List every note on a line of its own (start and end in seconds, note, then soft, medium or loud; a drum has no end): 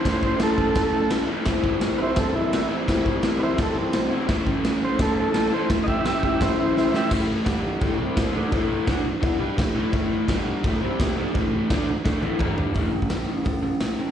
0.00 0.21 C5 medium
0.04 1.27 A2 medium
0.04 1.30 E3 loud
0.04 1.28 A3 loud
0.04 1.27 C#4 loud
0.04 kick loud
0.04 snare loud
0.04 crash medium
0.09 1.27 E4 loud
0.23 0.40 C5 loud
0.23 kick medium
0.39 1.10 A4 loud
0.39 snare loud
0.39 crash medium
0.58 kick medium
0.75 kick loud
0.75 snare loud
0.75 crash medium
1.10 snare loud
1.10 crash medium
1.27 1.45 E3 medium
1.27 1.46 A3 medium
1.27 1.45 C#4 medium
1.27 1.48 E4 medium
1.32 1.43 A2 medium
1.43 2.68 C3 medium
1.43 2.71 E3 loud
1.43 2.69 G3 loud
1.43 kick loud
1.43 snare loud
1.43 crash medium
1.48 2.68 C4 loud
1.48 2.67 E4 loud
1.64 kick medium
1.81 snare loud
1.81 crash medium
1.98 2.17 E4 medium
1.98 2.00 B4 medium
2.03 2.18 C5 loud
2.16 2.34 C4 medium
2.16 2.35 A4 medium
2.16 kick loud
2.16 snare loud
2.16 crash medium
2.35 2.69 E4 loud
2.53 snare loud
2.53 crash medium
2.68 2.89 E3 medium
2.68 2.87 G3 medium
2.68 2.86 C4 medium
2.68 2.92 E4 medium
2.72 2.86 C3 medium
2.88 4.10 C3 loud
2.88 4.13 E3 medium
2.88 4.11 G3 loud
2.88 4.10 C4 loud
2.88 kick loud
2.88 snare loud
2.88 crash medium
2.92 4.09 E4 loud
3.06 kick medium
3.23 snare loud
3.23 crash medium
3.40 3.58 E4 medium
3.40 3.42 B4 medium
3.40 3.59 C5 medium
3.58 3.77 C4 medium
3.58 kick loud
3.58 snare loud
3.58 crash medium
3.63 3.78 A4 medium
3.78 4.11 C4 loud
3.93 snare loud
3.93 crash medium
4.10 4.28 E3 medium
4.10 4.28 G3 medium
4.10 4.28 C4 medium
4.10 4.31 E4 medium
4.14 4.27 C3 medium
4.27 5.51 A2 medium
4.27 5.51 E3 medium
4.27 5.52 A3 loud
4.27 5.51 C#4 loud
4.27 kick loud
4.27 snare loud
4.27 crash medium
4.31 5.50 E4 loud
4.47 kick medium
4.64 snare loud
4.64 crash medium
4.85 5.01 C5 loud
4.99 5.18 A4 medium
4.99 kick loud
4.99 snare loud
4.99 crash medium
5.20 5.53 A4 medium
5.34 snare loud
5.34 crash medium
5.51 5.69 E3 medium
5.51 5.70 A3 medium
5.51 5.69 C#4 medium
5.51 5.68 E4 medium
5.51 5.71 C5 medium
5.55 5.67 A2 medium
5.68 6.92 A2 medium
5.68 6.93 E3 loud
5.68 6.93 A3 medium
5.68 6.92 C#4 medium
5.68 kick loud
5.68 snare loud
5.68 crash medium
5.72 6.91 E4 loud
5.83 5.86 D#5 medium
5.88 6.04 G4 medium
5.88 6.06 E5 loud
5.88 kick medium
6.05 6.23 G4 medium
6.05 6.23 E5 loud
6.05 snare loud
6.05 crash medium
6.23 6.40 G4 medium
6.23 6.41 E5 loud
6.23 kick medium
6.41 6.58 E4 medium
6.41 6.59 C5 loud
6.41 kick loud
6.41 snare loud
6.41 crash medium
6.59 6.75 E4 medium
6.59 6.77 C5 medium
6.77 6.94 E4 medium
6.77 6.95 C5 medium
6.77 snare medium
6.92 7.09 E3 medium
6.92 7.10 A3 medium
6.92 7.10 C#4 medium
6.92 7.10 E4 medium
6.92 snare medium
6.96 7.08 A2 medium
6.96 7.12 G4 medium
6.96 7.12 E5 loud
7.10 7.45 A2 medium
7.10 7.46 E3 loud
7.10 7.46 A3 loud
7.10 kick loud
7.10 crash loud
7.10 crash medium
7.45 7.81 G2 loud
7.45 7.79 D3 loud
7.45 7.80 G3 loud
7.45 kick loud
7.45 snare loud
7.45 crash medium
7.80 7.98 A2 medium
7.80 7.99 E3 loud
7.80 7.99 A3 loud
7.80 kick loud
7.80 crash medium
7.99 8.32 C3 loud
7.99 8.32 G3 loud
7.99 8.34 C4 loud
8.17 kick loud
8.17 snare loud
8.17 crash medium
8.32 8.51 D3 medium
8.32 8.51 A3 medium
8.32 8.52 D4 medium
8.51 8.86 A2 loud
8.51 8.87 E3 loud
8.51 8.86 A3 loud
8.51 kick loud
8.51 crash medium
8.86 9.04 D3 loud
8.86 9.05 A3 loud
8.86 9.05 D4 loud
8.86 kick loud
8.86 snare loud
8.86 crash medium
9.21 9.39 E3 loud
9.21 9.39 B3 loud
9.21 9.40 E4 loud
9.21 kick loud
9.21 crash medium
9.39 9.57 G3 medium
9.39 9.58 D4 loud
9.39 9.58 G4 loud
9.57 9.72 A2 medium
9.57 9.72 E3 medium
9.57 kick loud
9.57 snare loud
9.57 crash medium
9.74 9.91 A2 medium
9.74 9.91 E3 loud
9.74 9.92 A3 medium
9.92 10.27 A2 loud
9.92 10.28 E3 medium
9.92 10.28 A3 loud
9.92 kick loud
9.92 crash medium
10.28 10.63 G2 loud
10.28 10.64 D3 loud
10.28 10.64 G3 loud
10.28 kick loud
10.28 snare loud
10.28 crash medium
10.64 10.81 A2 loud
10.64 10.82 E3 loud
10.64 10.82 A3 loud
10.64 kick loud
10.64 crash medium
10.82 11.16 C3 medium
10.82 11.17 G3 loud
10.82 11.18 C4 loud
11.00 kick loud
11.00 snare loud
11.00 crash medium
11.17 11.34 D3 medium
11.17 11.34 A3 medium
11.17 11.35 D4 medium
11.34 11.70 A2 medium
11.34 11.70 E3 loud
11.34 11.70 A3 loud
11.34 kick loud
11.34 crash medium
11.70 11.87 D3 loud
11.70 11.88 A3 loud
11.70 11.88 D4 loud
11.70 kick loud
11.70 snare loud
11.70 crash medium
12.05 12.22 D3 loud
12.05 12.22 A3 loud
12.05 12.23 D4 loud
12.05 kick loud
12.05 snare medium
12.22 12.40 A2 loud
12.22 12.40 E3 loud
12.22 12.40 A3 loud
12.22 high tom medium
12.39 12.75 G2 loud
12.39 12.75 D3 loud
12.39 12.76 G3 loud
12.39 kick loud
12.39 mid tom loud
12.58 floor tom medium
12.74 12.92 A3 medium
12.74 12.92 C#4 loud
12.74 12.93 E4 medium
12.74 kick loud
12.74 open hi-hat soft
12.93 13.09 A3 medium
12.93 13.09 C#4 medium
13.02 kick medium
13.10 13.27 A3 medium
13.10 13.27 C#4 medium
13.10 snare loud
13.10 open hi-hat medium
13.28 13.44 A3 medium
13.28 13.44 C#4 medium
13.45 13.61 A3 medium
13.45 13.62 C#4 medium
13.45 kick loud
13.45 open hi-hat medium
13.63 13.79 A3 medium
13.63 13.79 C#4 medium
13.80 13.97 A3 medium
13.80 13.97 C#4 medium
13.80 snare loud
13.80 open hi-hat medium
13.99 14.11 A3 medium
13.99 14.11 C#4 medium